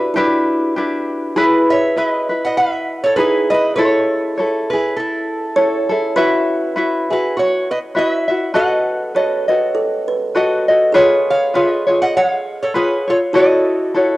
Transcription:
0.00 0.15 D4 soft
0.00 0.16 E4 soft
0.00 0.17 F#4 medium
0.00 0.16 B4 medium
0.14 0.76 D4 medium
0.14 1.05 E4 medium
0.14 0.77 E4 medium
0.14 0.75 G4 loud
0.14 0.78 B4 loud
0.76 1.36 D4 medium
0.76 1.36 E4 medium
0.76 1.36 G4 medium
0.76 1.38 B4 medium
1.36 3.22 E4 medium
1.36 1.97 E4 loud
1.36 1.96 G#4 medium
1.36 1.97 B4 loud
1.70 1.95 C#5 medium
1.70 1.97 E5 loud
1.96 2.30 E4 medium
1.96 2.30 G#4 medium
1.96 2.28 B4 medium
1.96 2.41 B4 medium
1.96 2.09 E5 loud
2.09 2.45 D#5 loud
2.29 3.17 E4 medium
2.29 3.16 B4 soft
2.45 2.57 D#5 medium
2.45 2.57 F#5 medium
2.57 3.01 B4 medium
2.57 3.05 E5 loud
3.04 3.17 A4 medium
3.04 3.16 C#5 loud
3.16 3.50 D#4 medium
3.16 3.51 E4 medium
3.16 3.78 G#4 loud
3.16 3.50 G#4 medium
3.16 3.49 G#4 medium
3.16 3.51 B4 loud
3.16 3.49 B4 medium
3.50 3.77 D#4 soft
3.50 3.77 E4 soft
3.50 3.76 B4 medium
3.50 3.75 D#5 loud
3.54 3.76 B4 medium
3.76 4.39 E4 medium
3.76 5.52 A4 loud
3.76 4.67 A4 medium
3.76 4.37 A4 medium
3.76 4.45 C#5 medium
3.76 4.36 C#5 medium
4.37 4.71 E4 medium
4.37 4.71 A4 medium
4.37 4.70 C#5 soft
4.45 4.70 B4 medium
4.70 5.57 E4 soft
4.70 4.96 G#4 medium
4.70 4.97 B4 medium
4.96 5.87 E4 medium
4.96 5.86 A4 medium
5.56 5.90 E4 medium
5.56 5.88 A4 medium
5.56 6.18 C#5 loud
5.56 5.90 C#5 medium
5.89 6.16 E4 medium
5.89 6.16 G#4 medium
5.89 6.16 A4 medium
6.16 6.76 E4 loud
6.16 6.76 F#4 medium
6.16 8.63 B4 loud
6.16 6.75 B4 medium
6.16 6.77 E5 loud
6.76 7.10 E4 medium
6.76 7.10 F#4 medium
6.76 7.09 B4 medium
6.76 7.10 E5 medium
7.10 7.95 E4 medium
7.10 7.95 F#4 soft
7.10 7.34 G#4 medium
7.10 7.38 B4 medium
7.37 7.68 F#4 medium
7.37 7.71 C#5 medium
7.71 7.78 B4 medium
7.71 7.78 D#5 medium
7.95 8.28 E4 medium
7.95 8.29 F#4 medium
7.95 8.29 B4 medium
7.95 8.52 B4 medium
7.95 8.27 E5 medium
7.95 8.56 E5 loud
8.28 8.53 E4 medium
8.28 8.53 F#4 soft
8.28 8.54 E5 medium
8.54 9.14 F#4 medium
8.54 9.15 A4 medium
8.54 9.17 A4 loud
8.54 9.14 B4 medium
8.54 9.15 D#5 medium
8.54 9.72 D#5 medium
8.54 9.71 F#5 loud
9.15 9.48 F#4 medium
9.15 9.47 A4 soft
9.15 9.49 B4 soft
9.15 9.50 C#5 loud
9.15 9.47 D#5 medium
9.48 10.34 F#4 medium
9.48 10.34 A4 soft
9.48 9.76 B4 medium
9.48 10.34 D#5 medium
9.75 10.06 A4 loud
10.08 10.20 B4 medium
10.35 10.68 F#4 medium
10.35 10.67 A4 medium
10.35 10.97 A4 medium
10.35 10.68 B4 medium
10.35 10.67 D#5 medium
10.68 10.94 F#4 soft
10.68 10.94 A4 medium
10.68 10.94 D#5 medium
10.92 11.54 F4 loud
10.92 13.40 G#4 medium
10.92 11.54 G#4 loud
10.92 11.53 B4 medium
10.92 11.56 C#5 loud
11.30 11.54 C#5 medium
11.30 11.56 F5 medium
11.54 11.87 F4 medium
11.54 11.87 G#4 medium
11.54 11.88 B4 medium
11.54 11.98 B4 medium
11.54 11.86 C#5 medium
11.54 12.02 D#5 medium
11.87 12.74 F4 soft
11.87 12.74 G#4 soft
11.87 12.76 C#5 medium
12.02 12.14 D#5 medium
12.02 12.15 F#5 medium
12.17 12.59 C#5 medium
12.17 12.28 F#5 loud
12.28 12.63 F5 loud
12.63 12.75 A4 medium
12.63 12.75 C#5 medium
12.74 13.08 F4 medium
12.74 13.09 G#4 medium
12.74 13.07 G#4 medium
12.74 13.07 B4 medium
12.74 13.09 B4 loud
12.74 13.07 C#5 medium
13.08 13.34 F4 soft
13.08 13.17 A4 medium
13.08 13.34 C#5 medium
13.08 13.17 C#5 medium
13.33 13.94 E4 medium
13.33 14.17 F#4 medium
13.33 13.95 F#4 medium
13.33 13.94 A4 medium
13.33 14.17 A4 medium
13.33 13.95 C#5 medium
13.38 14.17 D#5 medium
13.94 14.17 E4 medium
13.94 14.17 F#4 medium
13.94 14.17 A4 medium
13.94 14.17 C#5 medium

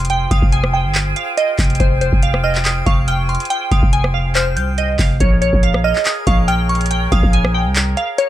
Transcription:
0.00 0.28 F1 loud
0.00 5.16 F4 medium
0.00 5.16 G#4 medium
0.00 5.16 C5 medium
0.00 5.16 G5 medium
0.05 closed hi-hat medium
0.10 0.27 G5 loud
0.10 closed hi-hat medium
0.31 0.42 F1 loud
0.31 0.48 F5 medium
0.31 0.51 D#6 medium
0.31 kick loud
0.31 closed hi-hat medium
0.42 0.86 F1 loud
0.42 kick loud
0.52 0.70 G#5 medium
0.52 closed hi-hat medium
0.64 cross-stick loud
0.74 1.14 G5 medium
0.85 1.15 G1 loud
0.95 clap loud
0.95 closed hi-hat medium
1.16 1.33 F5 medium
1.16 closed hi-hat medium
1.37 1.55 D#5 medium
1.37 closed hi-hat medium
1.59 1.79 F1 loud
1.59 kick medium
1.59 clap loud
1.59 closed hi-hat medium
1.59 open hi-hat medium
1.64 closed hi-hat medium
1.70 closed hi-hat medium
1.75 closed hi-hat medium
1.80 2.11 F1 loud
1.80 1.97 C5 medium
1.80 kick loud
1.80 closed hi-hat medium
2.01 2.18 C5 medium
2.01 closed hi-hat medium
2.13 2.83 F1 loud
2.13 kick loud
2.23 2.40 F5 loud
2.23 closed hi-hat medium
2.34 cross-stick loud
2.44 2.84 D#5 medium
2.44 2.64 F6 medium
2.55 clap medium
2.65 2.85 D#6 medium
2.65 clap loud
2.65 closed hi-hat medium
2.86 3.38 F1 loud
2.86 3.04 F5 medium
2.86 3.07 C#6 medium
2.86 kick loud
2.86 closed hi-hat medium
3.08 3.25 G5 medium
3.08 3.28 F6 medium
3.08 closed hi-hat medium
3.29 3.49 C6 medium
3.29 closed hi-hat medium
3.35 closed hi-hat medium
3.40 closed hi-hat medium
3.45 closed hi-hat medium
3.50 3.67 G5 loud
3.50 closed hi-hat medium
3.71 3.82 F1 loud
3.71 3.89 F5 medium
3.71 3.92 D#6 medium
3.71 kick loud
3.71 closed hi-hat medium
3.83 4.58 F1 loud
3.83 kick loud
3.93 4.10 G#5 medium
3.93 closed hi-hat medium
4.04 cross-stick loud
4.14 4.31 F5 medium
4.35 4.75 C5 medium
4.35 4.56 F6 medium
4.35 clap loud
4.35 closed hi-hat medium
4.56 4.97 C2 loud
4.56 4.77 G6 medium
4.56 closed hi-hat medium
4.78 4.95 D#5 medium
4.78 closed hi-hat medium
4.99 5.20 F1 loud
4.99 5.16 F5 medium
4.99 kick medium
4.99 clap loud
4.99 open hi-hat medium
5.20 5.52 A#1 loud
5.20 8.29 G#4 medium
5.20 8.29 A#4 medium
5.20 8.29 C#5 medium
5.20 5.38 C#5 medium
5.20 kick loud
5.20 closed hi-hat medium
5.42 5.59 C#5 medium
5.42 closed hi-hat medium
5.53 5.94 A#1 loud
5.53 kick loud
5.63 5.80 F5 loud
5.63 closed hi-hat medium
5.74 cross-stick loud
5.84 6.24 D#5 loud
5.84 6.05 F6 medium
5.95 clap medium
6.05 6.26 D#6 medium
6.05 clap loud
6.05 closed hi-hat medium
6.27 7.09 A#1 loud
6.27 6.44 F5 medium
6.27 6.47 C#6 medium
6.27 kick loud
6.27 closed hi-hat medium
6.48 6.65 G5 loud
6.48 6.68 F6 medium
6.48 closed hi-hat medium
6.69 6.90 C#6 medium
6.69 closed hi-hat medium
6.75 closed hi-hat medium
6.81 closed hi-hat medium
6.86 closed hi-hat medium
6.91 7.08 G5 loud
6.91 closed hi-hat medium
7.12 7.23 A#1 loud
7.12 7.29 F5 medium
7.12 7.32 D#6 medium
7.12 kick loud
7.12 closed hi-hat medium
7.23 7.67 A#1 loud
7.23 kick loud
7.33 7.50 G#5 medium
7.33 closed hi-hat medium
7.45 cross-stick loud
7.54 7.94 G5 medium
7.66 7.96 C2 loud
7.76 clap loud
7.76 closed hi-hat medium
7.97 8.14 F5 medium
7.97 closed hi-hat medium
8.18 8.29 C#5 medium
8.18 closed hi-hat medium

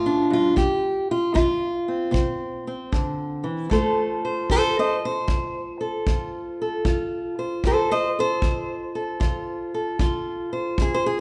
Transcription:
0.00 0.30 A2 medium
0.00 0.31 F4 loud
0.06 0.57 D4 medium
0.30 0.56 G2 medium
0.30 0.57 F4 medium
0.56 1.30 F2 medium
0.56 1.09 G4 medium
0.56 kick medium
1.11 1.34 F4 medium
1.34 2.08 F2 medium
1.34 2.13 F4 medium
1.34 kick medium
1.88 2.11 C4 soft
2.11 2.86 C3 medium
2.11 2.66 C4 soft
2.11 kick medium
2.67 3.68 C4 soft
2.92 3.45 D3 medium
2.92 kick medium
3.44 3.70 E3 medium
3.70 4.44 F2 medium
3.70 7.21 A3 medium
3.70 6.08 F4 soft
3.70 4.51 A4 soft
3.70 4.24 C5 medium
3.70 kick medium
4.25 4.51 C5 soft
4.50 5.24 F2 medium
4.50 4.76 A4 medium
4.50 4.77 C5 medium
4.50 kick medium
4.79 4.95 C5 medium
4.79 5.04 D#5 medium
5.05 6.61 C5 medium
5.28 6.01 F2 medium
5.28 kick medium
5.81 6.61 A4 soft
6.07 6.80 F2 medium
6.07 6.85 F4 soft
6.07 kick medium
6.62 7.66 A4 soft
6.85 7.58 F2 medium
6.85 9.20 F4 soft
6.85 kick medium
7.39 7.67 C5 soft
7.64 8.37 F2 medium
7.64 7.91 A4 medium
7.64 7.90 C5 medium
7.64 kick medium
7.91 8.08 C5 medium
7.91 8.17 D#5 medium
8.19 8.95 A4 soft
8.19 9.75 C5 medium
8.42 9.15 F2 medium
8.42 kick medium
8.95 9.74 A4 soft
9.20 9.94 F2 medium
9.20 10.00 F4 soft
9.20 kick medium
9.74 10.81 A4 soft
9.99 10.73 F2 medium
9.99 11.20 F4 medium
9.99 kick medium
10.53 10.94 C5 soft
10.78 11.20 F2 medium
10.78 10.97 G#4 medium
10.78 kick medium
10.94 11.03 C5 medium
11.06 11.20 G#4 medium

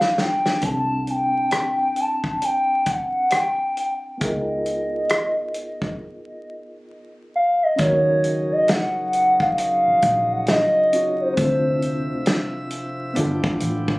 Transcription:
0.00 0.59 G1 medium
0.00 0.58 B3 medium
0.00 0.59 D4 medium
0.00 0.60 F4 medium
0.00 0.60 G4 medium
0.00 0.65 A4 medium
0.00 0.21 F5 loud
0.00 snare medium
0.18 0.65 G5 medium
0.18 snare medium
0.46 snare medium
0.61 4.17 C2 medium
0.61 4.16 C4 medium
0.61 4.17 D4 soft
0.61 4.17 E4 soft
0.61 1.12 A5 loud
0.61 kick medium
0.61 closed hi-hat medium
0.66 4.18 G4 soft
0.66 4.19 A4 medium
1.07 2.02 G5 loud
1.07 closed hi-hat soft
1.51 cross-stick medium
1.51 closed hi-hat medium
1.96 closed hi-hat soft
2.00 2.43 A5 loud
2.24 kick medium
2.42 2.91 G5 loud
2.42 closed hi-hat medium
2.86 3.35 F#5 medium
2.86 kick medium
2.86 closed hi-hat medium
3.30 3.77 G5 loud
3.30 cross-stick medium
3.30 closed hi-hat medium
3.77 3.94 G5 medium
3.77 closed hi-hat medium
4.18 7.73 B3 soft
4.18 7.74 D#4 soft
4.18 4.29 E4 soft
4.18 kick medium
4.18 closed hi-hat medium
4.22 7.76 C#2 medium
4.22 7.76 G#4 soft
4.22 7.77 A#4 medium
4.22 5.98 D#5 medium
4.28 7.78 F4 soft
4.66 closed hi-hat soft
5.09 cross-stick loud
5.09 closed hi-hat medium
5.54 closed hi-hat soft
5.82 kick medium
7.36 7.64 F5 medium
7.63 7.81 D#5 medium
7.76 8.51 D#2 medium
7.76 11.33 C#3 medium
7.76 11.33 F#3 medium
7.76 10.87 C#4 medium
7.76 11.33 D#4 medium
7.76 10.88 D#4 medium
7.76 8.53 C#5 medium
7.76 kick loud
7.76 closed hi-hat medium
7.82 10.90 F#4 medium
7.82 10.90 A#4 medium
8.24 closed hi-hat soft
8.52 8.71 D#5 loud
8.68 9.42 F#5 loud
8.68 snare loud
8.68 closed hi-hat medium
9.13 closed hi-hat medium
9.40 9.58 F5 loud
9.40 kick medium
9.58 10.33 F5 loud
9.58 closed hi-hat medium
9.88 muted fingered electric bass stroke soft
10.02 10.62 A#1 medium
10.02 kick medium
10.02 closed hi-hat medium
10.31 10.48 F#5 loud
10.47 11.22 D#5 loud
10.47 snare loud
10.47 closed hi-hat medium
10.92 11.37 C#4 soft
10.92 11.38 D#4 soft
10.92 11.38 F4 soft
10.92 11.39 F#4 soft
10.92 11.39 C#5 medium
10.92 closed hi-hat medium
11.21 12.55 C5 medium
11.34 12.10 D2 loud
11.34 13.15 C3 medium
11.34 13.14 F3 medium
11.34 13.11 C4 medium
11.34 13.12 D4 medium
11.34 13.13 E4 medium
11.34 13.15 E5 medium
11.34 kick loud
11.34 closed hi-hat medium
11.40 13.14 F4 medium
11.40 13.15 A4 medium
11.82 closed hi-hat soft
12.26 snare loud
12.26 closed hi-hat medium
12.70 closed hi-hat medium
13.14 13.39 G1 medium
13.14 13.99 F3 medium
13.14 13.99 A3 medium
13.14 13.99 B3 medium
13.14 13.99 D4 medium
13.14 13.99 E4 medium
13.14 13.99 G4 medium
13.14 closed hi-hat medium
13.19 13.99 F4 medium
13.19 13.99 A4 medium
13.44 muted fingered electric bass stroke soft
13.44 kick loud
13.60 13.99 A1 medium
13.60 closed hi-hat medium
13.88 kick medium

